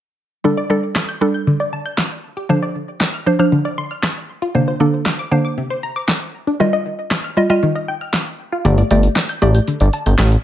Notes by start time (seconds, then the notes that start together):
0.44 D3 G3 D4 A4
0.57 D5
0.70 G3 D4 A4
0.95 snare, clap
1.09 G6
1.21 G3 D4 A4
1.34 G6
1.47 D3
1.60 D5
1.73 A5
1.86 G6
1.98 snare, clap
2.37 G4
2.49 D3 F3 D4 C5
2.63 D5
3.01 snare, clap
3.14 F6
3.26 F3 D4 C5
3.39 F3 D4 C5 F6
3.52 D3
3.65 D5
3.78 C6
3.91 F6
4.03 snare, clap
4.42 F4
4.55 C3 D3 A#3 D4 C5
4.68 C5
4.80 D3 A#3 D4 A4
5.06 snare, clap
5.19 D6
5.31 D3 A#3 D4 C5
5.45 D6
5.58 C3
5.70 C5
5.83 A#5
5.96 D6
6.08 snare, clap
6.47 D4
6.60 D#3 G3 F4 D#5
6.73 D#5
7.11 snare, clap
7.24 F6
7.37 G3 F4 D#5
7.50 G3 F4 D#5 F6
7.63 D#3
7.75 D#5
7.88 G5
8.01 F6
8.13 snare, clap
8.52 F4
8.65 G1 D3 A3 G4 D5, closed hi-hat
8.78 D5, closed hi-hat
8.91 G1 A3 G4 D5, closed hi-hat
9.03 closed hi-hat
9.16 snare, clap, closed hi-hat
9.29 G6, closed hi-hat
9.42 A1 A3 G4 D5, closed hi-hat
9.55 G6, closed hi-hat
9.67 D3, closed hi-hat
9.80 G1 D5, closed hi-hat
9.93 A5, closed hi-hat
10.06 G1 G6, closed hi-hat
10.18 A1, snare, clap, closed hi-hat
10.32 closed hi-hat